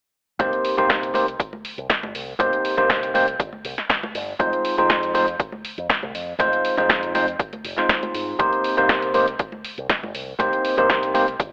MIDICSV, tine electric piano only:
0, 0, Header, 1, 2, 480
1, 0, Start_track
1, 0, Key_signature, -3, "minor"
1, 0, Tempo, 500000
1, 381, Time_signature, 4, 2, 24, 8
1, 11063, End_track
2, 0, Start_track
2, 0, Title_t, "Tine electric piano"
2, 0, Program_c, 0, 4
2, 377, Note_on_c, 0, 58, 81
2, 380, Note_on_c, 0, 60, 76
2, 383, Note_on_c, 0, 63, 74
2, 384, Note_on_c, 0, 67, 73
2, 387, Note_on_c, 0, 72, 88
2, 715, Note_off_c, 0, 58, 0
2, 717, Note_off_c, 0, 60, 0
2, 718, Note_off_c, 0, 63, 0
2, 719, Note_off_c, 0, 67, 0
2, 720, Note_off_c, 0, 72, 0
2, 743, Note_on_c, 0, 58, 73
2, 744, Note_on_c, 0, 60, 66
2, 749, Note_on_c, 0, 63, 66
2, 750, Note_on_c, 0, 67, 64
2, 753, Note_on_c, 0, 72, 77
2, 1072, Note_off_c, 0, 58, 0
2, 1072, Note_off_c, 0, 60, 0
2, 1074, Note_off_c, 0, 63, 0
2, 1075, Note_off_c, 0, 67, 0
2, 1077, Note_off_c, 0, 72, 0
2, 1095, Note_on_c, 0, 58, 69
2, 1098, Note_on_c, 0, 60, 66
2, 1099, Note_on_c, 0, 63, 62
2, 1101, Note_on_c, 0, 67, 63
2, 1104, Note_on_c, 0, 72, 74
2, 1199, Note_off_c, 0, 58, 0
2, 1201, Note_off_c, 0, 60, 0
2, 1201, Note_off_c, 0, 63, 0
2, 1202, Note_off_c, 0, 67, 0
2, 1204, Note_off_c, 0, 72, 0
2, 2295, Note_on_c, 0, 58, 81
2, 2299, Note_on_c, 0, 60, 75
2, 2301, Note_on_c, 0, 63, 75
2, 2303, Note_on_c, 0, 67, 78
2, 2306, Note_on_c, 0, 72, 92
2, 2634, Note_off_c, 0, 58, 0
2, 2636, Note_off_c, 0, 60, 0
2, 2637, Note_off_c, 0, 63, 0
2, 2638, Note_off_c, 0, 67, 0
2, 2640, Note_off_c, 0, 72, 0
2, 2662, Note_on_c, 0, 58, 74
2, 2665, Note_on_c, 0, 60, 67
2, 2667, Note_on_c, 0, 63, 66
2, 2670, Note_on_c, 0, 67, 65
2, 2671, Note_on_c, 0, 72, 80
2, 2991, Note_off_c, 0, 58, 0
2, 2993, Note_off_c, 0, 60, 0
2, 2994, Note_off_c, 0, 63, 0
2, 2995, Note_off_c, 0, 67, 0
2, 2996, Note_off_c, 0, 72, 0
2, 3017, Note_on_c, 0, 58, 72
2, 3019, Note_on_c, 0, 60, 69
2, 3022, Note_on_c, 0, 63, 68
2, 3025, Note_on_c, 0, 67, 68
2, 3027, Note_on_c, 0, 72, 81
2, 3120, Note_off_c, 0, 58, 0
2, 3121, Note_off_c, 0, 60, 0
2, 3123, Note_off_c, 0, 63, 0
2, 3124, Note_off_c, 0, 67, 0
2, 3125, Note_off_c, 0, 72, 0
2, 4217, Note_on_c, 0, 56, 84
2, 4219, Note_on_c, 0, 60, 79
2, 4222, Note_on_c, 0, 63, 78
2, 4225, Note_on_c, 0, 65, 78
2, 4227, Note_on_c, 0, 72, 94
2, 4555, Note_off_c, 0, 56, 0
2, 4556, Note_off_c, 0, 60, 0
2, 4558, Note_off_c, 0, 63, 0
2, 4559, Note_off_c, 0, 65, 0
2, 4560, Note_off_c, 0, 72, 0
2, 4583, Note_on_c, 0, 56, 71
2, 4587, Note_on_c, 0, 60, 67
2, 4588, Note_on_c, 0, 63, 69
2, 4590, Note_on_c, 0, 65, 65
2, 4594, Note_on_c, 0, 72, 79
2, 4911, Note_off_c, 0, 56, 0
2, 4913, Note_off_c, 0, 60, 0
2, 4914, Note_off_c, 0, 63, 0
2, 4915, Note_off_c, 0, 65, 0
2, 4917, Note_off_c, 0, 72, 0
2, 4934, Note_on_c, 0, 56, 70
2, 4936, Note_on_c, 0, 60, 65
2, 4938, Note_on_c, 0, 63, 68
2, 4939, Note_on_c, 0, 65, 67
2, 4942, Note_on_c, 0, 72, 80
2, 5038, Note_off_c, 0, 56, 0
2, 5039, Note_off_c, 0, 60, 0
2, 5040, Note_off_c, 0, 63, 0
2, 5041, Note_off_c, 0, 65, 0
2, 5043, Note_off_c, 0, 72, 0
2, 6135, Note_on_c, 0, 56, 81
2, 6136, Note_on_c, 0, 60, 75
2, 6139, Note_on_c, 0, 63, 75
2, 6142, Note_on_c, 0, 65, 77
2, 6145, Note_on_c, 0, 72, 95
2, 6474, Note_off_c, 0, 56, 0
2, 6475, Note_off_c, 0, 60, 0
2, 6476, Note_off_c, 0, 63, 0
2, 6477, Note_off_c, 0, 65, 0
2, 6479, Note_off_c, 0, 72, 0
2, 6502, Note_on_c, 0, 56, 75
2, 6505, Note_on_c, 0, 60, 66
2, 6507, Note_on_c, 0, 63, 68
2, 6509, Note_on_c, 0, 65, 69
2, 6512, Note_on_c, 0, 72, 80
2, 6831, Note_off_c, 0, 56, 0
2, 6833, Note_off_c, 0, 60, 0
2, 6833, Note_off_c, 0, 63, 0
2, 6834, Note_off_c, 0, 65, 0
2, 6836, Note_off_c, 0, 72, 0
2, 6857, Note_on_c, 0, 56, 69
2, 6858, Note_on_c, 0, 60, 65
2, 6861, Note_on_c, 0, 63, 66
2, 6864, Note_on_c, 0, 65, 65
2, 6865, Note_on_c, 0, 72, 78
2, 6960, Note_off_c, 0, 56, 0
2, 6961, Note_off_c, 0, 60, 0
2, 6962, Note_off_c, 0, 63, 0
2, 6963, Note_off_c, 0, 65, 0
2, 6964, Note_off_c, 0, 72, 0
2, 7457, Note_on_c, 0, 56, 72
2, 7462, Note_on_c, 0, 60, 64
2, 7467, Note_on_c, 0, 63, 65
2, 7472, Note_on_c, 0, 65, 66
2, 7477, Note_on_c, 0, 72, 75
2, 8028, Note_off_c, 0, 56, 0
2, 8031, Note_off_c, 0, 60, 0
2, 8033, Note_off_c, 0, 63, 0
2, 8036, Note_off_c, 0, 65, 0
2, 8038, Note_off_c, 0, 72, 0
2, 8054, Note_on_c, 0, 58, 80
2, 8056, Note_on_c, 0, 60, 77
2, 8059, Note_on_c, 0, 63, 78
2, 8062, Note_on_c, 0, 67, 79
2, 8064, Note_on_c, 0, 72, 92
2, 8393, Note_off_c, 0, 58, 0
2, 8395, Note_off_c, 0, 60, 0
2, 8396, Note_off_c, 0, 63, 0
2, 8397, Note_off_c, 0, 67, 0
2, 8399, Note_off_c, 0, 72, 0
2, 8420, Note_on_c, 0, 58, 74
2, 8422, Note_on_c, 0, 60, 69
2, 8425, Note_on_c, 0, 63, 67
2, 8427, Note_on_c, 0, 67, 68
2, 8429, Note_on_c, 0, 72, 79
2, 8750, Note_off_c, 0, 58, 0
2, 8751, Note_off_c, 0, 60, 0
2, 8753, Note_off_c, 0, 63, 0
2, 8754, Note_off_c, 0, 67, 0
2, 8755, Note_off_c, 0, 72, 0
2, 8773, Note_on_c, 0, 58, 73
2, 8775, Note_on_c, 0, 60, 67
2, 8778, Note_on_c, 0, 63, 66
2, 8781, Note_on_c, 0, 67, 65
2, 8782, Note_on_c, 0, 72, 77
2, 8878, Note_off_c, 0, 58, 0
2, 8879, Note_off_c, 0, 60, 0
2, 8881, Note_off_c, 0, 63, 0
2, 8882, Note_off_c, 0, 67, 0
2, 8882, Note_off_c, 0, 72, 0
2, 9973, Note_on_c, 0, 58, 81
2, 9976, Note_on_c, 0, 60, 80
2, 9979, Note_on_c, 0, 63, 74
2, 9981, Note_on_c, 0, 67, 80
2, 9983, Note_on_c, 0, 72, 94
2, 10313, Note_off_c, 0, 58, 0
2, 10315, Note_off_c, 0, 60, 0
2, 10316, Note_off_c, 0, 63, 0
2, 10317, Note_off_c, 0, 67, 0
2, 10318, Note_off_c, 0, 72, 0
2, 10344, Note_on_c, 0, 58, 74
2, 10347, Note_on_c, 0, 60, 65
2, 10348, Note_on_c, 0, 63, 69
2, 10351, Note_on_c, 0, 67, 65
2, 10353, Note_on_c, 0, 72, 83
2, 10672, Note_off_c, 0, 58, 0
2, 10673, Note_off_c, 0, 60, 0
2, 10674, Note_off_c, 0, 63, 0
2, 10676, Note_off_c, 0, 67, 0
2, 10677, Note_off_c, 0, 72, 0
2, 10696, Note_on_c, 0, 58, 74
2, 10698, Note_on_c, 0, 60, 69
2, 10700, Note_on_c, 0, 63, 66
2, 10702, Note_on_c, 0, 67, 68
2, 10706, Note_on_c, 0, 72, 77
2, 10799, Note_off_c, 0, 58, 0
2, 10800, Note_off_c, 0, 60, 0
2, 10802, Note_off_c, 0, 63, 0
2, 10802, Note_off_c, 0, 67, 0
2, 10805, Note_off_c, 0, 72, 0
2, 11063, End_track
0, 0, End_of_file